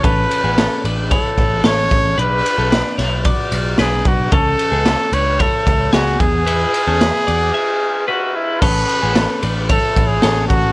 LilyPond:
<<
  \new Staff \with { instrumentName = "Trumpet" } { \time 4/4 \key a \major \tempo 4 = 112 b'4. r8 a'4 cis''4 | b'4. r4. gis'8 fis'8 | a'4. cis''8 a'4 fis'8 gis'8~ | gis'2. fis'8 e'8 |
b'4. r8 a'8. gis'8. fis'8 | }
  \new Staff \with { instrumentName = "Clean electric guitar" } { \time 4/4 \key a \major <cis' a'>8. <b gis'>16 <cis' a'>8 <d' b'>8 <e' cis''>4 <cis' a'>4 | <d' b'>8. <cis' a'>16 <d' b'>8 <e' cis''>8 <fis' d''>4 <d' b'>4 | <cis' a'>8. <b gis'>16 <cis' a'>8 <d' b'>8 <e' cis''>4 <b gis'>4 | <e' b'>8. <cis' a'>16 <e' b'>8 <fis' d''>8 <gis' e''>4 <e' b'>4 |
<cis' a'>8. <b gis'>16 <cis' a'>8 <d' b'>8 <e' cis''>4 <cis' a'>4 | }
  \new Staff \with { instrumentName = "Picked electric bass" } { \clef bass \time 4/4 \key a \major a,,8 r16 a,,8 r16 a,,8. r16 a,,8 a,,8 a,,8 | b,,8 r16 b,,8 r16 b,,8. r16 b,,8 b,,8 b,,8 | cis,8 r16 cis,8 r16 cis,8. r16 cis,8 cis,8 e,8~ | e,8 r16 e,8 r16 e,8 r2 |
a,,8 r16 a,,8 r16 a,,8. r16 a,,8 a,,8 a,,8 | }
  \new DrumStaff \with { instrumentName = "Drums" } \drummode { \time 4/4 <bd cymr>8 cymr8 <cymr sn>8 cymr8 <bd cymr>8 <bd cymr>8 <cymr sn>8 <bd cymr>8 | cymr8 cymr8 <cymr sn>8 <cymr sn>8 <bd cymr>8 cymr8 <cymr sn>8 <bd cymr>8 | <bd cymr>8 cymr8 <cymr sn>8 cymr8 <bd cymr>8 <bd cymr>8 <cymr sn>8 <bd cymr>8 | cymr8 cymr8 <cymr sn>8 cymr8 r4 r4 |
<cymc bd>8 cymr8 <cymr sn>8 cymr8 <bd cymr>8 <bd cymr>8 <cymr sn>8 <bd cymr>8 | }
>>